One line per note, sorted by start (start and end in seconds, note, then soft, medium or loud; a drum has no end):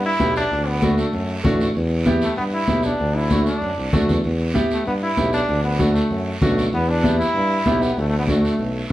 0.00 0.14 G2 loud
0.06 0.34 E4 loud
0.20 0.45 B1 medium
0.20 0.42 B3 medium
0.20 0.42 E4 medium
0.20 0.42 G4 medium
0.20 high conga medium
0.20 short guiro medium
0.36 0.70 D4 loud
0.36 short guiro medium
0.51 1.01 D2 loud
0.51 high conga soft
0.51 long guiro medium
0.68 0.98 B3 medium
0.82 1.04 A3 medium
0.82 1.04 D4 medium
0.82 1.05 F#4 medium
0.82 high conga medium
0.82 short guiro medium
0.98 1.42 A3 medium
0.98 short guiro medium
1.13 1.38 F#2 medium
1.13 high conga soft
1.13 long guiro medium
1.44 1.69 A1 medium
1.44 1.66 A3 medium
1.44 1.66 D4 medium
1.44 1.67 F#4 loud
1.44 high conga medium
1.44 low conga medium
1.44 short guiro medium
1.60 short guiro medium
1.75 2.25 E2 loud
1.75 high conga soft
1.75 long guiro medium
2.06 2.28 B3 medium
2.06 2.28 E4 medium
2.06 2.29 G4 loud
2.06 high conga medium
2.06 short guiro medium
2.21 2.37 A3 loud
2.21 short guiro medium
2.36 2.62 G2 medium
2.36 2.45 B3 medium
2.36 high conga soft
2.36 long guiro medium
2.54 2.86 E4 loud
2.67 2.94 B1 medium
2.67 2.90 B3 medium
2.67 2.91 E4 medium
2.67 2.91 G4 medium
2.67 high conga medium
2.67 short guiro medium
2.83 3.18 D4 loud
2.83 short guiro medium
2.98 3.50 D2 loud
2.98 high conga soft
2.98 long guiro medium
3.16 3.46 E4 medium
3.30 3.53 A3 medium
3.30 3.53 D4 medium
3.30 3.53 F#4 medium
3.30 high conga medium
3.30 short guiro medium
3.46 3.90 D4 loud
3.46 short guiro medium
3.62 3.75 F#2 medium
3.62 high conga soft
3.62 long guiro medium
3.78 3.92 C2 medium
3.93 4.07 D2 medium
3.93 4.15 A3 medium
3.93 4.15 D4 medium
3.93 4.15 F#4 medium
3.93 high conga medium
3.93 low conga medium
3.93 short guiro medium
4.09 4.23 E2 medium
4.09 low conga medium
4.09 short guiro medium
4.24 4.53 E2 loud
4.24 high conga soft
4.24 long guiro medium
4.54 4.77 B3 medium
4.54 4.77 E4 medium
4.54 4.77 G4 loud
4.54 high conga medium
4.54 short guiro medium
4.71 4.87 A3 medium
4.71 short guiro medium
4.86 5.11 G2 medium
4.86 4.94 B3 loud
4.86 high conga soft
4.86 long guiro medium
5.03 5.32 E4 loud
5.17 5.42 B1 medium
5.17 5.39 B3 medium
5.17 5.40 E4 medium
5.17 5.40 G4 medium
5.17 high conga medium
5.17 short guiro medium
5.33 5.62 D4 loud
5.33 short guiro medium
5.48 5.99 D2 loud
5.48 high conga soft
5.48 long guiro medium
5.64 5.93 B3 medium
5.79 6.01 A3 medium
5.79 6.02 D4 medium
5.79 6.02 F#4 medium
5.79 high conga medium
5.79 short guiro medium
5.94 6.38 A3 medium
5.94 short guiro medium
6.11 6.36 F#2 medium
6.11 high conga soft
6.11 long guiro medium
6.42 6.67 B1 medium
6.42 6.64 A3 medium
6.42 6.64 D4 medium
6.42 6.64 F#4 loud
6.42 high conga medium
6.42 low conga medium
6.42 short guiro medium
6.58 short guiro medium
6.72 7.22 E2 loud
6.72 6.91 B3 loud
6.72 high conga soft
6.72 long guiro medium
6.90 7.18 D4 loud
7.03 7.26 B3 medium
7.03 7.26 E4 medium
7.03 7.26 G4 medium
7.03 high conga medium
7.03 short guiro medium
7.19 7.85 E4 loud
7.19 short guiro medium
7.35 7.60 G2 loud
7.35 high conga soft
7.35 long guiro medium
7.66 7.91 B1 medium
7.66 7.88 B3 medium
7.66 7.89 E4 medium
7.66 7.89 G4 medium
7.66 high conga medium
7.66 short guiro medium
7.82 8.01 B3 medium
7.82 short guiro medium
7.97 8.47 D2 loud
7.97 8.09 A3 medium
7.97 high conga soft
7.97 long guiro medium
8.10 8.14 A3 medium
8.19 8.23 B3 medium
8.28 8.50 A3 medium
8.28 8.88 A3 medium
8.28 8.50 D4 medium
8.28 8.51 F#4 medium
8.28 high conga medium
8.28 short guiro medium
8.45 short guiro medium
8.59 8.84 B1 medium
8.59 high conga soft
8.59 long guiro medium